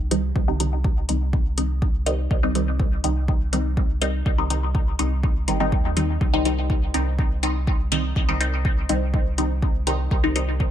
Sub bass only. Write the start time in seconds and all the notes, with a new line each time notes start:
Already playing: C2
0.36 C2
1.09 C2
2.31 C2
3.04 C2
4.26 C2
4.99 C2
5.48 G1
5.72 D#2
6.21 C2
6.94 C2
8.16 C2
8.89 C2
10.11 C2